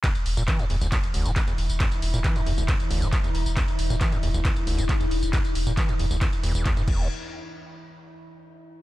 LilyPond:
<<
  \new Staff \with { instrumentName = "Synth drone" } { \time 4/4 \tempo 4 = 136 <e e'>1~ | <e e'>1~ | <e e'>1~ | <e e'>1 |
r1 | }
  \new Staff \with { instrumentName = "Acid bass" } { \clef bass \time 4/4 e,16 r8 ais,16 e16 e,16 e,16 d,16 e,16 r16 d,16 ais,16 e,16 e,16 r8 | e,16 r8 ais,16 e16 e,16 e,16 d,16 e,16 r16 d,16 ais,16 e,16 e,16 r8 | e,16 r8 ais,16 e16 e,16 e,16 d,16 e,16 r16 d,16 ais,16 e,16 e,16 r8 | e,16 r8 ais,16 e16 e,16 e,16 d,16 e,16 r16 e,16 e,16 e,16 g,16 e,8 |
r1 | }
  \new Staff \with { instrumentName = "Sub bass" } { \clef bass \time 4/4 r16 e,,16 e,,16 e,,16 r16 e,,16 e,,16 e,,16 r16 e,,16 e,,16 e,,16 r16 e,,16 e,,16 e,,16 | r16 e,,16 e,,16 e,,16 r16 e,,16 e,,16 e,,16 r16 e,,16 e,,16 e,,16 r16 e,,16 e,,16 e,,16 | r16 e,,16 e,,16 e,,16 r16 e,,16 e,,16 e,,16 r16 e,,16 e,,16 e,,16 r16 e,,16 e,,16 e,,16 | r16 e,,16 e,,16 e,,16 r16 e,,16 e,,16 e,,16 r16 e,,16 e,,16 e,,16 r16 e,,16 e,,8 |
r1 | }
  \new DrumStaff \with { instrumentName = "Drums" } \drummode { \time 4/4 <hc hh bd cymr tamb>16 <hh tamb>16 hho16 <hh tamb>16 <hc hh bd cymr tamb>16 <hh tamb>16 hho16 <hh tamb>16 <hc hh bd cymr tamb>16 <hh tamb>16 hho16 <hh tamb>16 <hc hh bd cymr tamb>16 <hh tamb>16 hho16 <hh tamb>16 | <hc hh bd cymr tamb>16 <hh tamb>16 hho16 <hh tamb>16 <hc hh bd cymr tamb>16 <hh tamb>16 hho16 <hh tamb>16 <hc hh bd cymr tamb>16 <hh tamb>16 hho16 <hh tamb>16 <hc hh bd cymr tamb>16 <hh tamb>16 hho16 <hh tamb>16 | <hc hh bd cymr tamb>16 <hh tamb>16 hho16 <hh tamb>16 <hc hh bd cymr tamb>16 <hh tamb>16 hho16 <hh tamb>16 <hc hh bd cymr tamb>16 <hh tamb>16 hho16 <hh tamb>16 <hc hh bd cymr tamb>16 <hh tamb>16 hho16 <hh tamb>16 | <hc hh bd cymr tamb>16 <hh tamb>16 hho16 <hh tamb>16 <hc hh bd cymr tamb>16 <hh tamb>16 hho16 <hh tamb>16 <hc hh bd cymr tamb>16 <hh tamb>16 hho16 <hh tamb>16 <hc hh bd cymr tamb>16 <hh tamb>16 <cymc bd>8 |
r4 r4 r4 r4 | }
>>